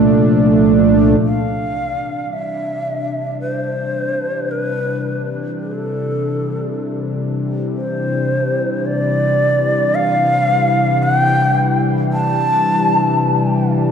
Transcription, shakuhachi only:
1.25 2.35 F5 medium
2.33 3.40 E5 medium
3.40 4.53 C5 medium
4.51 5.32 B4 medium
5.60 5.75 G#4 medium
5.75 7.19 A4 medium
7.77 8.87 C5 medium
8.86 9.97 D5 medium
9.95 11.05 F5 loud
11.03 11.18 F#5 loud
11.18 11.85 G5 loud
12.13 13.72 A5 loud

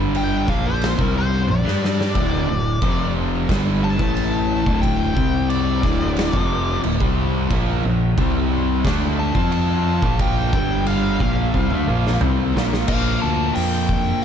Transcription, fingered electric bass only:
0.00 0.44 G1 loud
0.49 0.95 A#1 medium
0.99 1.46 C2 loud
1.50 1.65 A#1 medium
1.66 2.13 G2 medium
2.16 2.47 D1 medium
2.51 2.81 D1 medium
2.82 3.46 F1 loud
3.50 3.97 G1 loud
4.00 4.63 A1 loud
4.67 5.14 D1 medium
5.17 5.80 C2 loud
5.84 6.31 D1 medium
6.34 6.81 F1 loud
6.84 7.00 D1 medium
7.00 7.48 C2 medium
7.51 7.83 A#1 loud
7.84 8.16 A#1 medium
8.18 8.81 C2 loud
8.85 9.32 D2 loud
9.35 9.99 F2 loud
10.03 10.50 A#1 loud
10.53 11.17 G1 loud
11.21 11.52 A#1 loud
11.54 11.70 C2 medium
11.71 11.87 D2 medium
11.88 12.19 A#1 loud
12.21 12.52 C2 loud
12.56 12.87 A#1 loud
12.89 13.16 A#1 medium
13.23 13.50 D2 medium
13.56 14.11 F2 medium

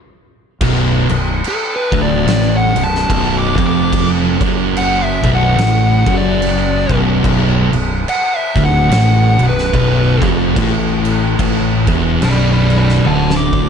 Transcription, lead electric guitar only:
1.48 1.73 A4 loud
1.76 2.01 B4 medium
2.02 2.55 D5 loud
2.57 2.83 F#5 medium
2.84 3.37 A5 loud
3.38 3.65 D6 medium
3.67 4.08 D6 loud
4.78 5.04 F#5 loud
5.04 5.31 E5 medium
5.35 6.13 F#5 medium
6.17 6.96 D5 loud
8.09 8.36 F#5 loud
8.36 8.62 E5 loud
8.65 9.44 F#5 loud
9.49 10.27 B4 loud
12.24 12.50 D5 medium
12.24 12.50 B5 loud
12.52 12.76 D5 medium
12.52 12.78 B5 medium
12.79 13.04 D5 medium
12.79 13.05 B5 medium
13.07 13.31 F#5 medium
13.07 13.33 A5 loud
13.37 13.69 D6 loud

